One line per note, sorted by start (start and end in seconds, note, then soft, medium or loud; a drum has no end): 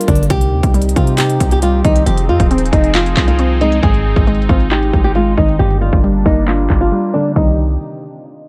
0.00 0.28 G3 medium
0.00 0.30 G3 medium
0.00 0.28 A#3 medium
0.00 0.30 A#3 medium
0.00 0.28 D4 medium
0.00 0.30 D4 medium
0.00 0.26 A#4 medium
0.00 closed hi-hat medium
0.08 0.29 G1 loud
0.08 0.30 D3 medium
0.08 0.25 D4 medium
0.08 kick medium
0.08 closed hi-hat medium
0.15 closed hi-hat medium
0.23 closed hi-hat medium
0.30 0.54 C2 loud
0.30 2.05 C3 medium
0.30 1.40 C3 loud
0.30 5.56 C4 medium
0.30 2.05 D#4 medium
0.30 2.05 G4 medium
0.30 0.72 G4 loud
0.30 kick loud
0.30 closed hi-hat medium
0.41 closed hi-hat medium
0.52 0.63 D#2 loud
0.63 0.95 C2 loud
0.63 kick loud
0.63 closed hi-hat medium
0.74 1.61 G3 medium
0.74 closed hi-hat medium
0.82 closed hi-hat medium
0.89 closed hi-hat medium
0.96 1.39 C3 loud
0.96 2.07 C4 medium
0.96 1.13 F4 medium
0.96 kick loud
0.96 closed hi-hat medium
1.07 closed hi-hat medium
1.18 2.07 D#4 loud
1.18 1.49 G4 medium
1.18 clap loud
1.18 closed hi-hat medium
1.30 closed hi-hat medium
1.40 1.83 C2 loud
1.40 kick medium
1.40 closed hi-hat medium
1.51 1.60 G4 medium
1.51 closed hi-hat medium
1.62 2.07 G3 loud
1.62 1.80 F4 medium
1.62 closed hi-hat medium
1.85 2.06 C2 loud
1.85 2.07 D#3 medium
1.85 2.02 D#4 medium
1.85 kick medium
1.85 closed hi-hat medium
1.96 closed hi-hat medium
2.06 2.30 F1 loud
2.06 3.17 F3 loud
2.06 3.81 F3 medium
2.06 5.56 D#4 medium
2.06 2.23 G4 medium
2.06 3.81 G#4 medium
2.06 closed hi-hat medium
2.18 closed hi-hat medium
2.29 2.39 F2 loud
2.29 2.46 F4 medium
2.40 2.72 D#1 loud
2.40 kick medium
2.40 closed hi-hat medium
2.51 3.38 C4 medium
2.51 closed hi-hat medium
2.58 closed hi-hat medium
2.65 closed hi-hat medium
2.72 3.15 F1 loud
2.72 2.89 D#4 medium
2.72 3.83 D#4 medium
2.72 kick loud
2.72 closed hi-hat medium
2.84 closed hi-hat medium
2.94 3.83 F4 medium
2.94 3.26 F4 medium
2.94 clap loud
2.94 closed hi-hat medium
3.06 closed hi-hat medium
3.17 3.80 C2 loud
3.17 kick medium
3.17 clap medium
3.17 closed hi-hat medium
3.28 3.59 F4 medium
3.28 closed hi-hat medium
3.39 3.83 C4 loud
3.39 closed hi-hat medium
3.61 3.83 G#3 medium
3.61 3.78 D#4 medium
3.61 closed hi-hat medium
3.72 closed hi-hat medium
3.83 4.15 G#1 loud
3.83 4.93 G#2 loud
3.83 5.58 G#3 medium
3.83 4.24 G#4 loud
3.83 kick loud
3.83 closed hi-hat medium
3.94 closed hi-hat medium
4.16 4.48 G#1 loud
4.16 kick loud
4.16 closed hi-hat medium
4.27 5.14 G#3 medium
4.27 closed hi-hat medium
4.35 closed hi-hat medium
4.42 closed hi-hat medium
4.49 4.92 G#1 loud
4.49 5.60 C4 medium
4.49 4.66 F4 medium
4.49 kick loud
4.49 closed hi-hat medium
4.60 closed hi-hat medium
4.71 5.59 D#4 loud
4.71 5.03 G4 medium
4.71 clap loud
4.71 closed hi-hat medium
4.83 closed hi-hat medium
4.93 5.36 G#1 loud
4.93 kick medium
4.93 closed hi-hat medium
5.04 5.13 G4 medium
5.04 closed hi-hat medium
5.15 5.60 G#3 medium
5.15 5.32 F4 medium
5.15 closed hi-hat medium
5.37 5.59 G#1 loud
5.37 5.60 D#3 medium
5.37 5.54 D#4 medium
5.37 kick medium
5.37 closed hi-hat medium
5.49 closed hi-hat medium
5.59 5.91 G1 loud
5.59 6.70 G2 medium
5.59 7.34 G3 medium
5.59 7.34 A#3 medium
5.59 7.34 D4 medium
5.59 5.76 G4 loud
5.59 closed hi-hat medium
5.71 closed hi-hat medium
5.81 5.98 F4 medium
5.93 6.24 G1 loud
5.93 kick loud
5.93 closed hi-hat medium
6.04 6.91 G3 medium
6.04 closed hi-hat medium
6.25 6.68 G1 loud
6.25 7.36 A#3 medium
6.25 6.43 D#4 medium
6.25 kick loud
6.25 open hi-hat medium
6.37 closed hi-hat medium
6.47 7.36 D4 medium
6.47 6.79 F4 medium
6.47 clap loud
6.47 closed hi-hat medium
6.59 closed hi-hat medium
6.70 6.92 G1 loud
6.70 kick medium
6.70 clap loud
6.70 closed hi-hat medium
6.81 7.12 F4 medium
6.81 closed hi-hat medium
6.92 7.35 G3 medium
7.14 7.36 D3 medium
7.14 7.31 D4 medium
7.36 7.77 C2 loud
7.36 7.57 C3 medium
7.36 7.57 D#3 medium
7.36 7.57 G3 medium
7.36 7.57 C4 medium
7.36 7.57 D#4 medium
7.36 7.57 D#4 loud
7.36 7.57 G4 medium
7.36 kick loud
7.36 crash medium